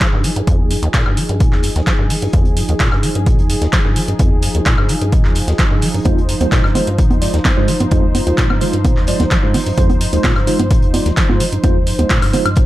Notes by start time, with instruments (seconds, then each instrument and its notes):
Already playing: analog synth pad F3 D#4 G#4
0.01 acid bass F3, kick, snare, clap, closed hi-hat
0.13 acid bass G2
0.24 acid bass F3, closed hi-hat, open hi-hat
0.36 acid bass G2, closed hi-hat
0.47 acid bass F2, kick, closed hi-hat
0.59 acid bass D#2
0.71 acid bass G2, closed hi-hat, open hi-hat
0.83 acid bass D#2, closed hi-hat
0.93 acid bass A#2, kick, snare, clap, closed hi-hat
1.06 acid bass G2, high woodblock
1.17 acid bass F3, closed hi-hat, open hi-hat
1.29 acid bass G2, closed hi-hat
1.40 acid bass A#2, kick, closed hi-hat
1.52 acid bass D#2, snare, clap
1.63 acid bass G2, closed hi-hat, open hi-hat
1.76 acid bass D#2, snare, closed hi-hat
1.87 acid bass F3, kick, snare, clap, closed hi-hat
1.99 acid bass G2
2.10 acid bass F3, open hi-hat
2.22 acid bass G2, closed hi-hat
2.33 acid bass F2, kick, closed hi-hat
2.45 acid bass D#2, closed hi-hat
2.57 acid bass G2, closed hi-hat, open hi-hat
2.68 acid bass D#2, closed hi-hat
2.79 acid bass A#2, kick, snare, clap, closed hi-hat
2.92 acid bass G2, snare, high woodblock
3.03 acid bass F3, closed hi-hat, open hi-hat
3.15 acid bass G2, closed hi-hat
3.26 acid bass A#2, kick, closed hi-hat
3.38 acid bass D#2, closed hi-hat
3.50 acid bass G2, closed hi-hat, open hi-hat
3.62 acid bass D#2, snare, closed hi-hat
3.73 acid bass F3, kick, snare, clap, closed hi-hat
3.85 acid bass G2
3.96 acid bass F3, closed hi-hat, open hi-hat
4.08 acid bass G2, closed hi-hat
4.19 acid bass F2, kick, closed hi-hat
4.32 acid bass D#2
4.42 acid bass G2, closed hi-hat, open hi-hat
4.55 acid bass D#2, closed hi-hat
4.66 acid bass A#2, kick, snare, clap, closed hi-hat
4.78 acid bass G2, high woodblock
4.89 acid bass F3, closed hi-hat, open hi-hat
5.01 acid bass G2, closed hi-hat
5.12 acid bass A#2, kick, closed hi-hat
5.25 acid bass D#2, snare, clap
5.35 acid bass G2, closed hi-hat, open hi-hat
5.47 acid bass D#2, snare, closed hi-hat
5.58 acid bass F3, kick, snare, clap, closed hi-hat
5.71 acid bass G2
5.82 acid bass F3, open hi-hat
5.94 acid bass G2, closed hi-hat
6.05 acid bass F2, tine electric piano G#3 D#4 F4 C5, analog synth pad C5, kick, closed hi-hat, high conga
6.18 acid bass D#2, closed hi-hat
6.29 acid bass G2, closed hi-hat, open hi-hat
6.40 acid bass D#2, tine electric piano G#3 D#4 F4 C5, closed hi-hat, high conga
6.52 acid bass A#2, kick, snare, clap, closed hi-hat
6.64 acid bass G2, snare, high woodblock
6.75 acid bass F3, tine electric piano G#3 D#4 F4 C5, closed hi-hat, open hi-hat, high conga
6.87 acid bass G2, closed hi-hat
6.98 acid bass A#2, kick, closed hi-hat
7.10 acid bass D#2, closed hi-hat, high conga
7.22 acid bass G2, tine electric piano G#3 D#4 F4 D5, closed hi-hat, open hi-hat
7.34 acid bass D#2, snare, closed hi-hat
7.45 acid bass F3, kick, snare, clap, closed hi-hat, high conga
7.57 acid bass G2, tine electric piano G#3 D#4 F4 C5
7.68 acid bass F3, closed hi-hat, open hi-hat
7.80 acid bass G2, closed hi-hat, high conga
7.91 acid bass F2, tine electric piano G#3 D#4 F4 C5, kick, closed hi-hat
8.04 acid bass D#2
8.15 acid bass G2, closed hi-hat, open hi-hat, high conga
8.27 acid bass D#2, tine electric piano G#3 D#4 F4 C5, closed hi-hat
8.37 acid bass A#2, kick, snare, clap, closed hi-hat
8.50 acid bass G2, high conga, high woodblock
8.61 acid bass F3, tine electric piano G#3 D#4 F4 C5, closed hi-hat, open hi-hat
8.73 acid bass G2, closed hi-hat
8.84 acid bass A#2, kick, closed hi-hat, high conga
8.97 acid bass D#2, snare, clap
9.07 acid bass G2, tine electric piano G#3 D#4 F4 D5, closed hi-hat, open hi-hat
9.20 acid bass D#2, snare, closed hi-hat, high conga
9.31 acid bass F3, kick, snare, clap, closed hi-hat
9.43 acid bass G2, tine electric piano G#3 D#4 F4 C5
9.54 acid bass F3, open hi-hat, high conga
9.66 acid bass G2, closed hi-hat
9.77 acid bass F2, tine electric piano G#3 D#4 F4 C5, kick, closed hi-hat
9.89 acid bass D#2, closed hi-hat, high conga
10.01 acid bass G2, closed hi-hat, open hi-hat
10.13 acid bass D#2, tine electric piano G#3 D#4 F4 C5, closed hi-hat
10.24 acid bass A#2, kick, snare, clap, closed hi-hat, high conga
10.36 acid bass G2, snare, high woodblock
10.47 acid bass F3, tine electric piano G#3 D#4 F4 C5, closed hi-hat, open hi-hat
10.59 acid bass G2, closed hi-hat, high conga
10.71 acid bass A#2, kick, closed hi-hat
10.82 acid bass D#2, closed hi-hat
10.94 acid bass G2, tine electric piano G#3 D#4 F4 D5, closed hi-hat, open hi-hat, high conga
11.06 acid bass D#2, snare, closed hi-hat
11.17 acid bass F3, kick, snare, clap, closed hi-hat
11.29 acid bass G2, tine electric piano G#3 D#4 F4 C5, high conga
11.40 acid bass F3, closed hi-hat, open hi-hat
11.52 acid bass G2, closed hi-hat
11.63 acid bass F2, tine electric piano G#3 D#4 F4 C5, kick, closed hi-hat, high conga
11.75 acid bass D#2
11.87 acid bass G2, closed hi-hat, open hi-hat
11.99 acid bass D#2, tine electric piano G#3 D#4 F4 C5, closed hi-hat, high conga
12.10 acid bass A#2, kick, snare, clap, closed hi-hat
12.22 acid bass G2, open hi-hat, high woodblock
12.33 acid bass F3, tine electric piano G#3 D#4 F4 C5, closed hi-hat, open hi-hat, high conga
12.45 acid bass G2, closed hi-hat, high woodblock
12.56 acid bass A#2, kick, closed hi-hat